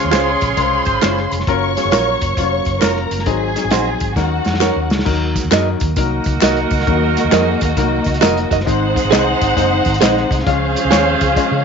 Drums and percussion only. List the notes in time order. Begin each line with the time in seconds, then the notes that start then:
0.12 snare, clap, closed hi-hat, tambourine
0.41 kick, closed hi-hat, tambourine
0.57 kick, closed hi-hat, tambourine
0.85 kick, closed hi-hat, tambourine
1.02 snare, clap, closed hi-hat, tambourine
1.17 snare
1.31 closed hi-hat, tambourine
1.40 snare
1.47 kick, closed hi-hat
1.77 snare, closed hi-hat, tambourine
1.92 snare, clap, closed hi-hat, tambourine
2.21 kick, closed hi-hat, tambourine
2.37 kick, closed hi-hat, tambourine
2.65 kick, closed hi-hat, tambourine
2.82 snare, clap, closed hi-hat, tambourine
2.96 snare
3.11 closed hi-hat, tambourine
3.19 snare
3.26 kick, closed hi-hat, tambourine
3.56 snare, closed hi-hat, tambourine
3.71 snare, clap, closed hi-hat, tambourine
4.00 kick, closed hi-hat, tambourine
4.16 kick, snare, tambourine
4.45 snare, tambourine
4.54 snare
4.61 snare, clap, tambourine
4.90 snare, tambourine
4.99 snare
5.06 kick, crash, tambourine
5.36 kick, snare, closed hi-hat, tambourine
5.51 snare, clap, closed hi-hat, tambourine
5.80 kick, closed hi-hat, tambourine
5.96 kick, closed hi-hat, tambourine
6.24 kick, closed hi-hat, tambourine
6.41 snare, clap, closed hi-hat, tambourine
6.57 closed hi-hat
6.71 kick, open hi-hat, tambourine
6.80 snare
6.87 kick, closed hi-hat, tambourine
7.17 snare, closed hi-hat, tambourine
7.32 snare, clap, closed hi-hat, tambourine
7.61 kick, closed hi-hat, tambourine
7.77 kick, closed hi-hat, tambourine
8.04 kick, closed hi-hat, tambourine
8.14 closed hi-hat
8.22 snare, clap, closed hi-hat, tambourine
8.37 closed hi-hat
8.51 kick, closed hi-hat, tambourine
8.60 snare
8.67 kick, closed hi-hat, tambourine
8.96 kick, snare, closed hi-hat, tambourine
9.12 snare, clap, closed hi-hat, tambourine
9.41 kick, closed hi-hat, tambourine
9.57 kick, closed hi-hat, tambourine
9.85 kick, closed hi-hat, tambourine
9.94 closed hi-hat
10.02 snare, clap, closed hi-hat, tambourine
10.17 snare
10.31 kick, closed hi-hat, tambourine
10.39 snare
10.47 kick, closed hi-hat
10.76 closed hi-hat, tambourine
10.91 snare, clap, closed hi-hat, tambourine
11.21 kick, closed hi-hat, tambourine
11.36 kick, closed hi-hat, tambourine